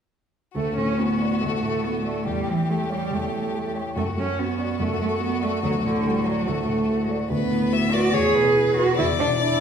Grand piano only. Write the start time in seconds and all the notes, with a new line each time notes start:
0.55 D2
0.77 A2
0.98 F#4
1.20 D5
1.43 D2
1.63 A2
1.84 F#4
2.05 D5
2.26 E2
2.47 E3
2.69 G4
2.90 C#5
3.11 E2
3.32 E3
3.54 G4
3.75 C#5
3.96 F#2
4.17 F#3
4.38 F#4
4.58 D5
4.80 F#2
5.00 F#3
5.20 F#4
5.41 D5
5.63 D2
5.84 A2
6.04 F#4
6.26 D5
6.47 D2
6.68 A2
6.88 F#4
7.09 D5
7.30 D2
7.51 A2
7.73 F#4
7.93 B4
8.14 E2
8.36 B2
8.56 E4
8.78 B4
8.99 E2
9.20 B2
9.41 D4